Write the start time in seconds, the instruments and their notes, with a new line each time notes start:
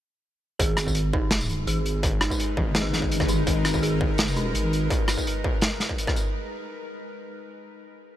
0.59 wobble bass G#1, synth drone G#3, synth bell G#4, kick, closed hi-hat
0.77 cross-stick, closed hi-hat, tambourine
0.87 kick, tambourine
0.95 closed hi-hat
1.06 synth drone D#4 B4
1.13 synth bell D#4, kick
1.31 snare, closed hi-hat
1.41 synth drone A#4, tambourine
1.49 closed hi-hat
1.67 wobble bass G#1, synth bell G#4, closed hi-hat
1.86 closed hi-hat
2.03 kick, closed hi-hat
2.21 synth bell D#4, cross-stick, closed hi-hat
2.30 kick, tambourine
2.40 closed hi-hat
2.57 wobble bass G#1, kick
2.75 synth bell G#4, snare, closed hi-hat
2.93 snare, closed hi-hat
3.02 kick
3.12 closed hi-hat
3.20 kick, cross-stick
3.28 synth bell D#4, closed hi-hat, tambourine
3.47 wobble bass G#1, kick, closed hi-hat
3.65 cross-stick, closed hi-hat, tambourine
3.74 kick, tambourine
3.82 synth bell G#4, closed hi-hat
4.01 kick
4.18 snare, closed hi-hat
4.28 tambourine
4.36 synth bell D#4, closed hi-hat
4.54 wobble bass G#1, closed hi-hat
4.73 closed hi-hat
4.90 kick, closed hi-hat
5.08 cross-stick, closed hi-hat, tambourine
5.18 kick, tambourine
5.27 closed hi-hat
5.44 kick
5.62 snare, closed hi-hat
5.80 snare, closed hi-hat
5.89 kick
5.98 closed hi-hat
6.07 kick, cross-stick
6.16 closed hi-hat, tambourine